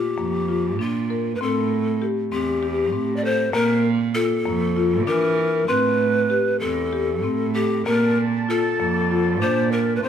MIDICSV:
0, 0, Header, 1, 5, 480
1, 0, Start_track
1, 0, Tempo, 612245
1, 1099, Time_signature, 7, 3, 24, 8
1, 3737, Tempo, 619835
1, 7857, End_track
2, 0, Start_track
2, 0, Title_t, "Pan flute"
2, 0, Program_c, 0, 75
2, 0, Note_on_c, 0, 67, 99
2, 629, Note_on_c, 0, 65, 87
2, 641, Note_off_c, 0, 67, 0
2, 1058, Note_on_c, 0, 71, 67
2, 1070, Note_off_c, 0, 65, 0
2, 1111, Note_on_c, 0, 69, 101
2, 1123, Note_off_c, 0, 71, 0
2, 1608, Note_off_c, 0, 69, 0
2, 1823, Note_on_c, 0, 67, 98
2, 2480, Note_on_c, 0, 74, 69
2, 2491, Note_off_c, 0, 67, 0
2, 2544, Note_on_c, 0, 72, 105
2, 2555, Note_off_c, 0, 74, 0
2, 2763, Note_off_c, 0, 72, 0
2, 2768, Note_on_c, 0, 70, 103
2, 3022, Note_off_c, 0, 70, 0
2, 3248, Note_on_c, 0, 69, 111
2, 3943, Note_off_c, 0, 69, 0
2, 3968, Note_on_c, 0, 70, 102
2, 4442, Note_on_c, 0, 71, 101
2, 4453, Note_off_c, 0, 70, 0
2, 5153, Note_on_c, 0, 69, 97
2, 5164, Note_off_c, 0, 71, 0
2, 5883, Note_on_c, 0, 67, 88
2, 5894, Note_off_c, 0, 69, 0
2, 6119, Note_off_c, 0, 67, 0
2, 6124, Note_on_c, 0, 70, 97
2, 6384, Note_off_c, 0, 70, 0
2, 6627, Note_on_c, 0, 69, 98
2, 7333, Note_on_c, 0, 72, 95
2, 7345, Note_off_c, 0, 69, 0
2, 7572, Note_on_c, 0, 70, 89
2, 7583, Note_off_c, 0, 72, 0
2, 7757, Note_on_c, 0, 71, 70
2, 7769, Note_off_c, 0, 70, 0
2, 7813, Note_on_c, 0, 72, 106
2, 7825, Note_off_c, 0, 71, 0
2, 7857, Note_off_c, 0, 72, 0
2, 7857, End_track
3, 0, Start_track
3, 0, Title_t, "Marimba"
3, 0, Program_c, 1, 12
3, 0, Note_on_c, 1, 65, 68
3, 110, Note_off_c, 1, 65, 0
3, 138, Note_on_c, 1, 58, 71
3, 350, Note_off_c, 1, 58, 0
3, 380, Note_on_c, 1, 65, 63
3, 591, Note_off_c, 1, 65, 0
3, 620, Note_on_c, 1, 62, 76
3, 832, Note_off_c, 1, 62, 0
3, 864, Note_on_c, 1, 70, 73
3, 1074, Note_off_c, 1, 70, 0
3, 1104, Note_on_c, 1, 60, 86
3, 1524, Note_off_c, 1, 60, 0
3, 1582, Note_on_c, 1, 67, 67
3, 1791, Note_off_c, 1, 67, 0
3, 1819, Note_on_c, 1, 60, 74
3, 2028, Note_off_c, 1, 60, 0
3, 2059, Note_on_c, 1, 67, 73
3, 2268, Note_off_c, 1, 67, 0
3, 2292, Note_on_c, 1, 60, 73
3, 2504, Note_off_c, 1, 60, 0
3, 2530, Note_on_c, 1, 69, 69
3, 2743, Note_off_c, 1, 69, 0
3, 2771, Note_on_c, 1, 58, 96
3, 3196, Note_off_c, 1, 58, 0
3, 3251, Note_on_c, 1, 65, 68
3, 3465, Note_off_c, 1, 65, 0
3, 3493, Note_on_c, 1, 58, 72
3, 3708, Note_off_c, 1, 58, 0
3, 3735, Note_on_c, 1, 65, 77
3, 3947, Note_off_c, 1, 65, 0
3, 3975, Note_on_c, 1, 62, 83
3, 4186, Note_off_c, 1, 62, 0
3, 4211, Note_on_c, 1, 70, 66
3, 4423, Note_off_c, 1, 70, 0
3, 4447, Note_on_c, 1, 60, 81
3, 4871, Note_off_c, 1, 60, 0
3, 4925, Note_on_c, 1, 67, 69
3, 5140, Note_off_c, 1, 67, 0
3, 5169, Note_on_c, 1, 60, 68
3, 5383, Note_off_c, 1, 60, 0
3, 5411, Note_on_c, 1, 67, 70
3, 5625, Note_off_c, 1, 67, 0
3, 5648, Note_on_c, 1, 60, 75
3, 5864, Note_off_c, 1, 60, 0
3, 5895, Note_on_c, 1, 69, 72
3, 6109, Note_off_c, 1, 69, 0
3, 6134, Note_on_c, 1, 58, 89
3, 6562, Note_off_c, 1, 58, 0
3, 6617, Note_on_c, 1, 65, 71
3, 6831, Note_off_c, 1, 65, 0
3, 6857, Note_on_c, 1, 58, 67
3, 7070, Note_off_c, 1, 58, 0
3, 7100, Note_on_c, 1, 65, 71
3, 7312, Note_off_c, 1, 65, 0
3, 7340, Note_on_c, 1, 62, 84
3, 7550, Note_off_c, 1, 62, 0
3, 7579, Note_on_c, 1, 70, 72
3, 7789, Note_off_c, 1, 70, 0
3, 7815, Note_on_c, 1, 60, 82
3, 7857, Note_off_c, 1, 60, 0
3, 7857, End_track
4, 0, Start_track
4, 0, Title_t, "Woodwind section"
4, 0, Program_c, 2, 71
4, 6152, Note_on_c, 2, 50, 72
4, 6153, Note_on_c, 2, 58, 66
4, 6158, Note_on_c, 2, 81, 74
4, 7807, Note_off_c, 2, 50, 0
4, 7808, Note_off_c, 2, 58, 0
4, 7810, Note_off_c, 2, 81, 0
4, 7818, Note_on_c, 2, 48, 73
4, 7820, Note_on_c, 2, 57, 70
4, 7825, Note_on_c, 2, 67, 74
4, 7857, Note_off_c, 2, 48, 0
4, 7857, Note_off_c, 2, 57, 0
4, 7857, Note_off_c, 2, 67, 0
4, 7857, End_track
5, 0, Start_track
5, 0, Title_t, "Cello"
5, 0, Program_c, 3, 42
5, 141, Note_on_c, 3, 41, 89
5, 618, Note_on_c, 3, 46, 89
5, 630, Note_off_c, 3, 41, 0
5, 1032, Note_off_c, 3, 46, 0
5, 1098, Note_on_c, 3, 45, 97
5, 1716, Note_off_c, 3, 45, 0
5, 1821, Note_on_c, 3, 40, 82
5, 2300, Note_on_c, 3, 45, 88
5, 2311, Note_off_c, 3, 40, 0
5, 2709, Note_off_c, 3, 45, 0
5, 2772, Note_on_c, 3, 46, 107
5, 3394, Note_off_c, 3, 46, 0
5, 3497, Note_on_c, 3, 41, 95
5, 3981, Note_on_c, 3, 52, 95
5, 3992, Note_off_c, 3, 41, 0
5, 4389, Note_off_c, 3, 52, 0
5, 4451, Note_on_c, 3, 45, 97
5, 5070, Note_off_c, 3, 45, 0
5, 5175, Note_on_c, 3, 40, 86
5, 5652, Note_on_c, 3, 45, 99
5, 5664, Note_off_c, 3, 40, 0
5, 6069, Note_off_c, 3, 45, 0
5, 6141, Note_on_c, 3, 46, 96
5, 6762, Note_off_c, 3, 46, 0
5, 6859, Note_on_c, 3, 41, 92
5, 7344, Note_on_c, 3, 46, 100
5, 7356, Note_off_c, 3, 41, 0
5, 7752, Note_off_c, 3, 46, 0
5, 7815, Note_on_c, 3, 45, 109
5, 7857, Note_off_c, 3, 45, 0
5, 7857, End_track
0, 0, End_of_file